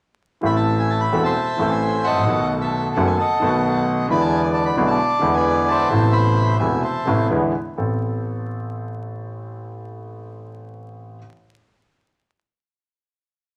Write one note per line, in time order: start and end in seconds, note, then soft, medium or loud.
0.41 1.09 A1 medium
0.41 1.09 A2 medium
0.41 1.08 E3 medium
0.41 1.09 A3 medium
0.41 1.09 C4 medium
0.41 1.10 A4 medium
0.46 1.24 E5 medium
0.46 0.57 B5 medium
0.56 0.77 A5 medium
0.79 0.91 G#5 medium
0.90 1.01 A5 medium
1.00 1.22 B5 medium
1.12 1.32 E1 medium
1.12 1.32 E2 medium
1.12 1.32 E3 medium
1.12 1.32 A3 medium
1.12 1.32 C4 medium
1.12 1.32 A4 medium
1.24 1.70 C5 medium
1.24 1.70 E5 medium
1.24 1.71 A5 medium
1.56 2.05 A1 medium
1.56 2.16 A1 medium
1.56 2.24 A2 medium
1.56 2.23 E3 medium
1.56 2.24 A3 medium
1.56 2.25 C4 medium
1.61 2.25 A4 medium
1.69 2.24 C5 medium
1.69 2.24 E5 medium
1.69 2.05 G#5 medium
2.04 2.26 A1 medium
2.04 2.61 A4 medium
2.04 2.48 D#5 medium
2.04 2.51 F#5 medium
2.11 2.17 G#1 soft
2.17 2.23 A1 medium
2.23 2.28 A#1 medium
2.23 2.92 B1 medium
2.23 2.92 D#3 medium
2.28 2.93 B1 medium
2.28 2.93 B2 medium
2.28 2.93 A3 medium
2.28 2.93 B3 medium
2.28 2.94 F#4 medium
2.50 2.55 D#5 medium
2.61 3.49 A4 medium
2.61 2.93 E5 medium
2.95 3.15 F#1 medium
2.95 3.16 F#1 medium
2.95 3.16 F#2 medium
2.95 3.15 D#3 medium
2.95 3.16 A3 medium
2.95 3.16 B3 medium
2.95 3.16 F#4 medium
2.95 3.06 F#5 medium
3.07 3.18 G#5 medium
3.18 4.06 D#5 medium
3.18 4.06 F#5 soft
3.18 3.83 A5 medium
3.40 4.06 B1 medium
3.40 4.06 B2 medium
3.40 4.05 D#3 medium
3.40 4.06 A3 medium
3.40 4.07 B3 medium
3.40 4.07 F#4 medium
4.08 4.74 E2 medium
4.08 4.73 D3 medium
4.08 4.74 E3 medium
4.08 4.74 G#3 medium
4.08 4.74 B3 medium
4.08 4.75 E4 medium
4.08 4.89 D5 medium
4.08 4.42 G#5 medium
4.08 4.22 B5 medium
4.21 4.42 A5 medium
4.44 4.49 G#5 medium
4.54 4.65 A5 medium
4.66 4.76 B5 medium
4.76 4.96 B1 medium
4.76 4.96 B2 medium
4.76 4.96 D3 medium
4.76 4.96 G#3 medium
4.76 4.96 B3 medium
4.76 4.96 E4 medium
4.87 5.35 D5 medium
4.87 5.35 A5 medium
5.19 5.87 E2 medium
5.19 5.88 E2 medium
5.19 5.86 D3 medium
5.19 5.87 E3 medium
5.19 5.87 G#3 medium
5.19 5.88 B3 medium
5.23 5.88 E4 medium
5.34 5.89 B4 medium
5.34 5.89 D5 medium
5.34 5.69 G#5 medium
5.68 6.58 C5 medium
5.68 6.14 E5 medium
5.68 6.11 A5 medium
5.89 6.57 A1 medium
5.89 6.57 A2 medium
5.89 6.57 B2 medium
5.89 6.56 C3 medium
5.89 6.56 A3 medium
5.89 6.58 E4 medium
6.13 6.83 E5 medium
6.13 6.56 B5 medium
6.60 6.80 E1 medium
6.60 6.80 E2 medium
6.60 6.80 C3 medium
6.60 6.80 A3 medium
6.60 6.80 B3 medium
6.60 6.80 E4 medium
6.60 6.81 G#5 medium
6.82 7.27 C5 soft
6.82 7.27 E5 soft
6.82 7.26 A5 medium
7.06 7.26 A1 medium
7.06 7.27 A1 medium
7.06 7.27 A2 medium
7.06 7.26 C3 medium
7.06 7.27 A3 medium
7.06 7.27 B3 medium
7.06 7.27 E4 medium
7.28 7.49 E2 medium
7.28 7.50 E2 medium
7.28 7.50 D3 medium
7.28 7.50 E3 medium
7.28 7.50 G#3 medium
7.28 7.50 B3 medium
7.28 7.51 E4 medium
7.76 7.96 A1 soft
7.76 11.18 A1 soft
7.76 11.18 B3 soft
7.76 11.18 C4 soft
7.76 11.18 A4 soft